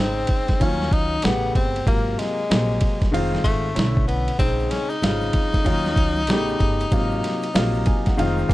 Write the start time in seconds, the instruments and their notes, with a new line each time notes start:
Already playing: upright bass G#1, grand piano C#3 G#3 C4 D#4, tenor saxophone C4
0.27 kick, ride
0.48 kick, snare, ride
0.60 upright bass D#2, grand piano D#3 F3 C#4 F4, tenor saxophone C#4, kick, ride
0.67 grand piano F#3
0.82 snare
0.92 upright bass C#2, tenor saxophone D#4, kick, ride
1.22 upright bass A1, grand piano C#3 A3 B3 G4, tenor saxophone B3, snare, hi-hat pedal, ride
1.55 upright bass G1, tenor saxophone C4, kick, ride
1.76 ride
1.86 upright bass G#1, grand piano C3 F#3 A#3 F4, tenor saxophone A#3, kick, ride
2.19 tenor saxophone G#3, snare, ride
2.49 upright bass A#1, grand piano C3 F#3 A#3 C4, snare, hi-hat pedal, ride
2.81 kick, ride
3.02 kick, snare, ride
3.12 upright bass F1, grand piano D#3 G#3 C4 F4, ride
3.35 snare
3.44 upright bass G#1, tenor saxophone A3, kick, ride
3.74 upright bass B1, grand piano D3 A3 C#4 E4, hi-hat pedal, ride
3.79 snare
3.97 kick
4.08 tenor saxophone B3, ride
4.28 ride
4.38 upright bass A#1, grand piano C#3 G#3 C4 D#4, tenor saxophone C4, kick, ride, shaker
4.59 shaker
4.70 tenor saxophone C#4, snare, ride, shaker
4.90 tenor saxophone D#4, shaker
5.01 upright bass G#1, grand piano C3 G#3 C4 F4, snare, hi-hat pedal, ride, shaker
5.08 grand piano C#3
5.21 high conga, shaker
5.33 kick, ride, high conga, low conga, shaker
5.52 kick, snare, ride, high conga, shaker
5.64 upright bass D#2, grand piano D#3 F#3 C#4 F4, kick, ride, shaker
5.85 snare, shaker
5.96 upright bass C#2, kick, ride, shaker
6.16 high conga, shaker
6.27 upright bass A1, grand piano C#3 A3 B3 G4, snare, hi-hat pedal, ride, high conga, shaker
6.47 shaker
6.60 upright bass G1, kick, ride, low conga, shaker
6.80 ride, shaker
6.91 upright bass G#1, grand piano C3 F#3 A#3 F4, kick, ride, shaker
7.11 shaker
7.23 snare, ride, shaker
7.42 ride, shaker
7.53 upright bass A#1, grand piano C3 F#3 A#3 F4, snare, hi-hat pedal, ride, shaker
7.74 high conga, shaker
7.86 grand piano G#5, kick, ride, low conga, shaker
8.06 grand piano F#5, kick, snare, ride, high conga, shaker
8.17 upright bass F1, grand piano D#3 G#3 C4 F4 F5, ride, shaker
8.38 shaker
8.49 upright bass G#1, grand piano A#3 G#5, kick, shaker